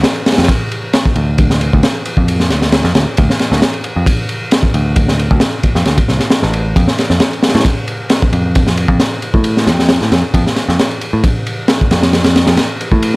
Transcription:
0.04 snare, ride
0.16 ride
0.26 snare, ride
0.32 snare, ride
0.38 picked electric bass F2, snare, ride
0.43 snare, ride
0.48 kick, ride
0.72 ride
0.93 snare, ride
1.05 kick
1.15 picked electric bass D2, ride
1.38 kick, ride
1.50 snare
1.61 ride
1.73 picked electric bass D2, kick
1.83 snare, ride
2.05 ride
2.17 picked electric bass F2, kick
2.28 ride
2.40 snare
2.50 picked electric bass D2, snare, ride
2.62 snare
2.72 snare, ride
2.84 picked electric bass F2, snare
2.95 picked electric bass D2, snare, ride
3.17 picked electric bass D2, kick, ride
3.30 snare
3.39 snare, ride
3.52 picked electric bass D2, snare
3.62 snare, ride
3.74 ride
3.84 ride
3.96 picked electric bass F2
4.06 kick, ride
4.29 ride
4.51 snare, ride
4.63 kick
4.74 picked electric bass D2, ride
4.96 kick, ride
5.08 snare
5.19 ride
5.31 picked electric bass D2, kick
5.40 snare, ride
5.63 kick, ride
5.75 picked electric bass F2, snare
5.86 picked electric bass D2, snare, ride
5.98 kick, ride
6.08 picked electric bass C2, snare
6.20 snare, ride
6.30 snare, ride
6.42 picked electric bass A1, snare
6.53 ride
6.76 picked electric bass F2, kick, ride
6.88 snare
6.98 snare, ride
7.10 picked electric bass F2, snare
7.20 snare, ride
7.33 ride
7.43 snare, ride
7.49 snare, ride
7.55 picked electric bass A2, snare, ride
7.60 snare, ride
7.65 kick, ride
7.88 ride
8.10 snare, ride
8.22 kick
8.33 picked electric bass F2, ride
8.55 kick, ride
8.67 snare
8.77 ride
8.88 picked electric bass F2, kick
9.00 snare, ride
9.22 ride
9.34 picked electric bass A2, kick
9.44 ride
9.57 snare
9.67 picked electric bass F2, snare, ride
9.79 snare
9.89 snare, ride
10.01 picked electric bass A2, snare
10.12 picked electric bass F2, snare, ride
10.34 picked electric bass F2, kick, ride
10.47 snare
10.56 snare, ride
10.68 picked electric bass F2, snare
10.79 snare, ride
10.91 ride
11.01 ride
11.13 picked electric bass A2
11.24 kick, ride
11.47 ride
11.68 snare, ride
11.81 kick
11.91 picked electric bass F2, snare, ride
12.03 snare, ride
12.13 snare, ride
12.24 snare, ride
12.36 snare, ride
12.47 picked electric bass F2, snare, ride
12.57 snare, ride
12.81 ride
12.92 picked electric bass A2, kick
13.03 ride

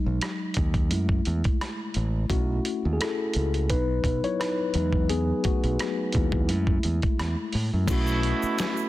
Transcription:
Already playing: tine electric piano F#3 G#3 D#4
0.06 fingered electric bass B1
0.21 cross-stick, closed hi-hat
0.54 fingered electric bass D#2, kick, closed hi-hat
0.74 kick, closed hi-hat
0.91 fingered electric bass F#2, tine electric piano G#3 A3 E4, closed hi-hat
1.09 kick
1.25 fingered electric bass E2, closed hi-hat
1.44 kick, closed hi-hat
1.61 cross-stick, closed hi-hat
1.94 fingered electric bass A1, closed hi-hat
2.30 fingered electric bass B1, tine electric piano A3 C#4 E4 F#4, kick, closed hi-hat
2.65 closed hi-hat
2.85 fingered electric bass D#2
2.93 tine electric piano G#4
3.01 tine electric piano E4 A4, cross-stick, closed hi-hat
3.33 fingered electric bass C#2, closed hi-hat
3.54 closed hi-hat
3.69 fingered electric bass B1, tine electric piano F#3 B3 D#4 B4, kick, closed hi-hat
4.04 fingered electric bass B1, kick, closed hi-hat
4.24 tine electric piano E4 C#5, closed hi-hat
4.40 tine electric piano D#4 B4, cross-stick, closed hi-hat
4.74 fingered electric bass E2, tine electric piano F#3 G#3 D#4, closed hi-hat
4.93 kick
5.09 tine electric piano B3 G#4, closed hi-hat
5.44 tine electric piano A3 F#4, kick, closed hi-hat
5.64 fingered electric bass B1, closed hi-hat
5.79 cross-stick, closed hi-hat
6.12 fingered electric bass D#2, tine electric piano G#3 E4, kick, closed hi-hat
6.32 kick
6.49 fingered electric bass F#2, tine electric piano G#3 A3 E4, closed hi-hat
6.67 kick
6.83 fingered electric bass E2, closed hi-hat
7.02 kick, closed hi-hat
7.19 fingered electric bass E2, cross-stick, closed hi-hat
7.52 fingered electric bass A2, open hi-hat
7.73 fingered electric bass F#2
7.87 fingered electric bass B1, horn section B2 A3 E4, tine electric piano A3 C#4 E4, kick, closed hi-hat, crash, shaker
7.91 tine electric piano F#4
8.07 shaker
8.23 closed hi-hat
8.42 muted fingered electric bass stroke, shaker
8.59 finger snap, snare, closed hi-hat, shaker
8.77 shaker

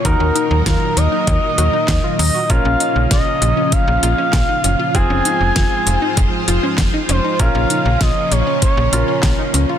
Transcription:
Already playing: string machine A#2
0.05 fm bass D#2, string machine D#3 F#3 D#4 A#4, grand piano D#4 F#4 A#4, analog synth lead A#4, kick, closed hi-hat
0.20 fm bass D#2, synth pluck C#4
0.36 synth pluck D#4, closed hi-hat
0.51 fm bass D#2
0.66 fm bass D#2, synth pluck F4, analog synth lead A#4, kick, snare, closed hi-hat
0.97 fm bass D#2, analog synth lead D#5, closed hi-hat
1.12 synth pluck D#4
1.27 fm bass D#2, kick, closed hi-hat
1.58 fm bass D#2, synth pluck F#4, closed hi-hat
1.73 synth pluck D#4
1.88 fm bass D#2, kick, snare, clap, closed hi-hat
2.04 synth pluck F4
2.19 fm bass D#2, synth pluck D#4, analog synth lead D#5, open hi-hat
2.35 synth pluck F#4
2.50 fm bass A#1, string machine C#3 F3 C#4 F4, grand piano C#4 F4 A#4, analog synth lead F5, kick, closed hi-hat
2.65 fm bass A#1, synth pluck C#4
2.80 synth pluck D#4, closed hi-hat
2.96 fm bass A#1
3.11 fm bass A#1, synth pluck F4, analog synth lead D#5, kick, snare, closed hi-hat
3.42 fm bass A#1, closed hi-hat
3.57 synth pluck C#4
3.72 analog synth lead F5, kick, closed hi-hat
3.88 fm bass A#1
4.03 fm bass A#1, synth pluck F4, closed hi-hat
4.18 synth pluck C#4
4.33 fm bass A#1, kick, snare, clap, closed hi-hat
4.49 synth pluck D#4
4.64 fm bass F#1, synth pluck C#4, closed hi-hat
4.79 synth pluck F4
4.95 fm bass F1, string machine G#2 F3 C5, grand piano C4 F4 G#4, analog synth lead G#5, kick, closed hi-hat
5.10 fm bass F1, synth pluck C#4
5.25 synth pluck D#4, closed hi-hat
5.41 fm bass F1
5.56 fm bass F1, synth pluck F4, kick, snare, closed hi-hat
5.87 fm bass F1, closed hi-hat
6.02 synth pluck D#4
6.17 fm bass F1, kick, closed hi-hat
6.48 fm bass F1, synth pluck F4, closed hi-hat
6.63 synth pluck C#4
6.78 fm bass F1, kick, snare, clap, closed hi-hat
6.94 synth pluck D#4
7.09 fm bass F1, synth pluck C#4, analog synth lead C5, closed hi-hat
7.24 synth pluck D#4
7.39 fm bass A#1, string machine A#2 C#3 C#4, grand piano C#4 F4 A#4, analog synth lead F5, kick, closed hi-hat
7.55 fm bass A#1, synth pluck C#4
7.70 synth pluck D#4, closed hi-hat
7.85 fm bass A#1
8.01 fm bass A#1, synth pluck F4, analog synth lead D#5, kick, snare, closed hi-hat
8.31 fm bass A#1, analog synth lead C#5, closed hi-hat
8.47 synth pluck C#4
8.62 analog synth lead C#5, kick, closed hi-hat
8.77 fm bass A#1
8.93 fm bass A#1, grand piano C#4 F4 A#4, synth pluck F4, closed hi-hat
9.08 synth pluck C#4
9.23 fm bass A#1, kick, snare, clap, closed hi-hat
9.39 synth pluck D#4
9.54 fm bass C#2, synth pluck C#4, closed hi-hat
9.69 synth pluck F4

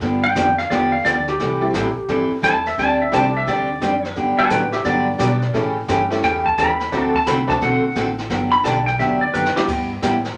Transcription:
0.01 upright bass G2, steel-string acoustic guitar D3 F3 B3 D4 G4, brush sweep, kick, snare
0.24 electric slide guitar G5
0.35 upright bass F2, steel-string acoustic guitar D3 F3 B3 D4 G4, kick, snare, hi-hat pedal
0.58 electric slide guitar F5, snare
0.70 upright bass E2, steel-string acoustic guitar D3 F3 B3 D4 G4, electric slide guitar D5, brush sweep, kick, snare
0.92 electric slide guitar F5
1.05 upright bass D2, steel-string acoustic guitar D3 F3 B3 D4 G4, electric slide guitar D5, kick, snare, hi-hat pedal
1.28 electric slide guitar G4, snare
1.39 upright bass C2, steel-string acoustic guitar C3 E3 G3 C4 E4 A4, brush sweep, kick, snare
1.61 honky-tonk piano G3 A3 C4 E4 G4
1.74 upright bass A1, steel-string acoustic guitar C3 E3 G3 C4 E4 A4, kick, snare, hi-hat pedal
1.97 muted upright bass stroke
2.08 upright bass G1, steel-string acoustic guitar C3 E3 G3 C4 E4 A4, brush sweep, kick, snare
2.31 muted upright bass stroke
2.42 upright bass E2, steel-string acoustic guitar C3 E3 G3 C4 E4 A4, electric slide guitar A5, kick, snare, hi-hat pedal
2.66 electric slide guitar E5, snare
2.78 upright bass D2, steel-string acoustic guitar D3 G3 C4 D4 G4, electric slide guitar A5, brush sweep, kick, snare
3.02 electric slide guitar E5
3.12 upright bass C2, steel-string acoustic guitar D3 G3 C4 D4 G4, honky-tonk piano G3 A3 C4 D4 G4, electric slide guitar A5, kick, snare, hi-hat pedal
3.37 electric slide guitar E5
3.46 upright bass D2, steel-string acoustic guitar D3 G3 C4 D4 G4, electric slide guitar D5, brush sweep, kick, snare
3.81 upright bass F#2, steel-string acoustic guitar D3 G3 C4 D4 G4, kick, snare, hi-hat pedal
4.05 snare
4.16 upright bass G2, steel-string acoustic guitar D3 F#3 B3 D4 G4, brush sweep, kick, snare
4.38 honky-tonk piano G3 B3 D4 F#4 G4, electric slide guitar F#5 A5, muted upright bass stroke
4.50 upright bass A2, steel-string acoustic guitar D3 F#3 B3 D4 G4, electric slide guitar B4 G5, kick, snare, hi-hat pedal
4.72 electric slide guitar G4 E5, snare
4.84 upright bass G2, steel-string acoustic guitar D3 F#3 B3 D4 G4, electric slide guitar D5, brush sweep, kick, snare
5.18 upright bass B2, steel-string acoustic guitar D3 F#3 B3 D4 G4, honky-tonk piano G3 B3 D4 F#4 G4, kick, snare, hi-hat pedal
5.42 snare
5.53 upright bass A2, steel-string acoustic guitar C#3 E3 A3 C#4 G4, honky-tonk piano A3 C#4 E4 G4 A4, brush sweep, kick, snare
5.88 upright bass G2, steel-string acoustic guitar C#3 E3 A3 C#4 G4, kick, snare, hi-hat pedal
6.10 honky-tonk piano A3 C#4 E4 G4 A4, snare
6.23 upright bass E2, steel-string acoustic guitar C#3 E3 A3 C#4 G4, electric slide guitar G5, brush sweep, kick, snare
6.46 electric slide guitar A5, kick
6.58 upright bass D#2, steel-string acoustic guitar C#3 E3 A3 C#4 G4, electric slide guitar B5, kick, snare, hi-hat pedal
6.80 snare
6.92 upright bass D2, steel-string acoustic guitar D3 A3 C4 F#4 A4, honky-tonk piano A3 C4 D4 F#4 A4, brush sweep, kick, snare
7.01 electric slide guitar A5
7.14 electric slide guitar A5, kick
7.26 upright bass C2, steel-string acoustic guitar D3 A3 C4 F#4 A4, electric slide guitar B5, kick, snare, hi-hat pedal
7.47 honky-tonk piano A3 C4 D4 F#4 A4, electric slide guitar A5, kick, snare
7.61 upright bass B1, steel-string acoustic guitar D3 A3 C4 F#4 A4, electric slide guitar F#5, brush sweep, kick, snare
7.83 muted upright bass stroke
7.95 upright bass A1, steel-string acoustic guitar D3 A3 C4 F#4 A4, kick, snare, hi-hat pedal
8.18 snare
8.30 upright bass G1, steel-string acoustic guitar D3 F#3 B3 D4 G4, brush sweep, kick, snare
8.52 electric slide guitar B5
8.63 upright bass B1, steel-string acoustic guitar D3 F#3 B3 D4 G4, electric slide guitar A5, kick, snare, hi-hat pedal
8.86 electric slide guitar G5, snare
8.98 upright bass D2, steel-string acoustic guitar D3 F#3 B3 D4 G4, electric slide guitar E5, brush sweep, kick, snare
9.21 electric slide guitar D5
9.34 upright bass F#2, steel-string acoustic guitar D3 F#3 B3 D4 G4, electric slide guitar B4, hi-hat pedal
9.46 snare
9.55 honky-tonk piano G3 B3 D4 E4 G4, electric slide guitar G4, muted upright bass stroke, snare
9.68 upright bass G2, steel-string acoustic guitar G3 B3 E4 G4, brush sweep, kick, snare, crash
10.02 upright bass A2, steel-string acoustic guitar G3 B3 E4 G4, kick, snare, hi-hat pedal
10.24 snare

